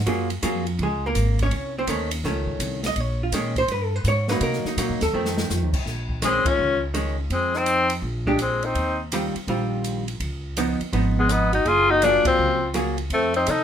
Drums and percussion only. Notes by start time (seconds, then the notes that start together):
0.06 kick, ride
0.30 ride
0.42 kick, hi-hat pedal, ride
0.67 ride
0.79 kick, ride
1.15 kick, hi-hat pedal, ride
1.39 kick, ride
1.51 kick, ride
1.87 kick, hi-hat pedal, ride
2.11 ride
2.24 kick, snare
2.47 kick
2.60 kick, hi-hat pedal, ride
2.83 snare, ride
2.96 kick, ride
3.32 kick, snare, hi-hat pedal, ride
3.56 kick, ride
3.68 kick, ride
4.04 kick, hi-hat pedal, ride
4.28 snare
4.40 kick, ride
4.53 snare
4.65 snare
4.77 kick, hi-hat pedal, ride
5.01 snare, ride
5.25 snare
5.38 snare
5.50 snare, hi-hat pedal
5.73 kick, crash
5.86 kick, snare
6.09 kick
6.22 snare, hi-hat pedal, ride
6.45 kick, ride
6.94 hi-hat pedal, ride
7.30 kick, ride
7.54 snare
7.66 hi-hat pedal, ride
7.90 ride
8.02 kick
8.26 kick
8.39 hi-hat pedal, ride
8.63 ride
8.75 kick, ride
9.12 hi-hat pedal, ride
9.36 ride
9.48 kick, ride
9.84 hi-hat pedal, ride
10.08 ride
10.20 kick, ride
10.57 hi-hat pedal, ride
10.81 ride
10.93 kick, ride
11.29 hi-hat pedal, ride
11.53 ride
11.65 kick, ride
12.02 hi-hat pedal, ride
12.25 kick, ride
12.74 hi-hat pedal, ride
12.98 ride
13.10 kick, ride
13.34 ride
13.46 hi-hat pedal, ride